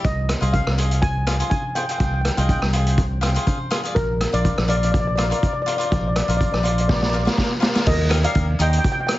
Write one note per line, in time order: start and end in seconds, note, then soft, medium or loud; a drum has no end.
0.04 0.33 C2 medium
0.04 0.55 D#5 medium
0.04 kick medium
0.04 closed hi-hat medium
0.29 cross-stick medium
0.29 closed hi-hat medium
0.41 0.60 C2 medium
0.41 0.63 F4 medium
0.41 0.64 G#4 medium
0.41 0.64 C5 medium
0.41 closed hi-hat medium
0.53 0.99 F5 medium
0.53 kick medium
0.53 closed hi-hat medium
0.67 1.41 C2 medium
0.67 cross-stick medium
0.78 1.08 F4 medium
0.78 1.08 G#4 medium
0.78 1.08 C5 medium
0.78 closed hi-hat medium
0.91 closed hi-hat medium
1.02 1.48 G#5 medium
1.02 kick medium
1.02 closed hi-hat medium
1.27 1.35 F4 medium
1.27 1.35 G#4 medium
1.27 1.36 D5 medium
1.27 cross-stick medium
1.27 closed hi-hat medium
1.40 1.62 F4 medium
1.40 1.62 G#4 medium
1.40 1.63 C5 medium
1.40 closed hi-hat medium
1.50 1.76 G#5 medium
1.50 kick medium
1.50 closed hi-hat medium
1.75 1.84 F4 medium
1.75 1.84 G#4 medium
1.75 1.85 C5 medium
1.75 1.83 G5 medium
1.75 closed hi-hat medium
1.84 1.90 G5 medium
1.89 2.18 F4 medium
1.89 2.19 G#4 medium
1.89 2.19 C5 medium
1.89 1.97 G5 medium
1.89 closed hi-hat medium
1.98 2.29 C2 medium
1.98 2.03 G5 soft
1.98 kick loud
1.98 closed hi-hat medium
2.04 2.13 G5 medium
2.14 2.20 G5 soft
2.21 2.28 G5 medium
2.21 cross-stick medium
2.21 closed hi-hat medium
2.30 2.36 G5 soft
2.37 2.56 C2 medium
2.37 2.60 F4 medium
2.37 2.60 G#4 medium
2.37 2.60 D#5 medium
2.37 2.42 G5 medium
2.37 closed hi-hat medium
2.43 2.49 G5 soft
2.49 2.58 G5 medium
2.49 kick medium
2.49 closed hi-hat medium
2.59 3.36 C2 medium
2.59 2.66 G5 medium
2.59 cross-stick medium
2.73 3.03 F4 medium
2.73 3.03 G#4 medium
2.73 3.04 C5 medium
2.73 closed hi-hat medium
2.87 closed hi-hat medium
2.98 kick medium
2.98 closed hi-hat medium
3.21 3.30 F4 medium
3.21 3.30 G#4 medium
3.21 3.31 C5 medium
3.21 3.45 G5 medium
3.21 cross-stick medium
3.21 closed hi-hat medium
3.35 3.57 F4 medium
3.35 3.58 G#4 medium
3.35 3.45 C5 medium
3.35 closed hi-hat medium
3.47 3.71 C5 medium
3.47 kick medium
3.47 closed hi-hat medium
3.71 3.79 F4 medium
3.71 3.79 G#4 medium
3.71 3.80 C5 medium
3.71 cross-stick medium
3.71 closed hi-hat medium
3.84 3.96 F4 medium
3.84 3.96 G#4 medium
3.84 3.97 D5 medium
3.84 closed hi-hat medium
3.95 4.25 A#1 medium
3.95 4.34 A#4 medium
3.95 kick loud
3.95 closed hi-hat medium
4.21 cross-stick medium
4.21 closed hi-hat medium
4.33 4.52 A#1 medium
4.33 4.55 F4 medium
4.33 4.56 A#4 medium
4.33 4.67 D5 medium
4.33 4.56 D5 medium
4.33 closed hi-hat medium
4.45 kick medium
4.45 closed hi-hat medium
4.58 5.32 A#1 medium
4.58 cross-stick medium
4.68 4.98 F4 medium
4.68 4.99 A#4 medium
4.68 4.75 D5 medium
4.68 4.99 F5 medium
4.68 closed hi-hat medium
4.77 4.83 D5 medium
4.83 4.90 D5 medium
4.83 closed hi-hat medium
4.92 4.99 D5 medium
4.92 kick loud
4.92 closed hi-hat medium
5.00 5.06 D5 medium
5.07 5.14 D5 medium
5.16 5.26 F4 medium
5.16 5.26 A#4 medium
5.16 5.22 D5 medium
5.16 5.27 F5 medium
5.16 cross-stick medium
5.16 closed hi-hat medium
5.24 5.31 D5 medium
5.30 5.53 F4 medium
5.30 5.53 A#4 medium
5.30 5.54 D5 medium
5.30 5.38 D5 medium
5.30 closed hi-hat medium
5.39 5.45 D5 medium
5.43 5.52 D5 medium
5.43 kick medium
5.43 closed hi-hat medium
5.53 5.60 D5 medium
5.62 5.68 D5 medium
5.66 5.75 F4 medium
5.66 5.75 A#4 medium
5.66 5.76 C5 medium
5.66 5.75 D5 medium
5.66 closed hi-hat medium
5.77 6.08 F4 medium
5.77 6.09 A#4 medium
5.77 6.09 C5 medium
5.77 5.83 D5 medium
5.77 closed hi-hat medium
5.85 5.90 D5 medium
5.92 6.20 A#1 medium
5.92 5.98 D5 medium
5.92 kick loud
5.92 closed hi-hat medium
5.99 6.06 D5 soft
6.07 6.13 D5 medium
6.16 6.21 D5 medium
6.16 cross-stick medium
6.16 closed hi-hat medium
6.22 6.29 D5 medium
6.28 6.47 A#1 medium
6.28 6.50 F4 medium
6.28 6.51 A#4 medium
6.28 6.52 C5 medium
6.28 6.36 D5 medium
6.28 closed hi-hat medium
6.37 6.43 D5 medium
6.37 kick medium
6.41 6.51 D5 medium
6.41 closed hi-hat medium
6.52 7.27 A#1 medium
6.52 6.57 D5 medium
6.52 cross-stick medium
6.58 6.64 D5 medium
6.63 6.94 F4 medium
6.63 6.94 A#4 medium
6.63 6.94 C5 medium
6.63 6.71 D5 medium
6.63 closed hi-hat medium
6.72 6.80 D5 medium
6.78 6.87 D5 medium
6.78 closed hi-hat medium
6.88 6.93 D5 medium
6.88 kick loud
6.88 snare medium
6.94 7.01 D5 medium
7.02 7.08 D5 medium
7.02 snare soft
7.09 7.21 F4 medium
7.09 7.17 D5 medium
7.14 7.22 A#4 medium
7.14 7.22 D5 medium
7.25 7.48 F4 medium
7.25 7.48 A#4 medium
7.25 7.49 D5 medium
7.25 snare medium
7.38 kick medium
7.38 snare medium
7.60 7.69 F4 medium
7.60 7.70 A#4 medium
7.60 7.70 D5 medium
7.60 snare medium
7.74 7.86 F4 medium
7.74 7.86 A#4 medium
7.74 7.87 D5 medium
7.74 snare medium
7.87 8.24 D#2 loud
7.87 8.22 A#4 medium
7.87 8.25 D#5 medium
7.87 kick loud
7.87 crash loud
8.09 8.18 D#4 medium
8.09 8.18 G4 medium
8.09 8.19 A#4 medium
8.09 cross-stick medium
8.09 closed hi-hat medium
8.23 8.45 D#4 medium
8.23 8.46 G4 medium
8.23 8.46 A#4 medium
8.23 8.58 D5 medium
8.23 8.61 F5 medium
8.23 closed hi-hat medium
8.35 8.54 D#2 medium
8.35 kick medium
8.35 closed hi-hat medium
8.59 8.78 D#2 medium
8.59 8.97 D#4 medium
8.59 8.97 G4 medium
8.59 8.98 C5 medium
8.59 8.68 D#5 medium
8.59 8.69 G5 medium
8.59 closed hi-hat medium
8.70 8.77 G5 medium
8.70 closed hi-hat medium
8.78 8.84 G5 medium
8.84 8.91 G5 medium
8.84 kick loud
8.84 closed hi-hat medium
8.92 8.99 G5 medium
9.01 9.06 G5 medium
9.07 9.14 G5 medium
9.07 cross-stick medium
9.07 closed hi-hat medium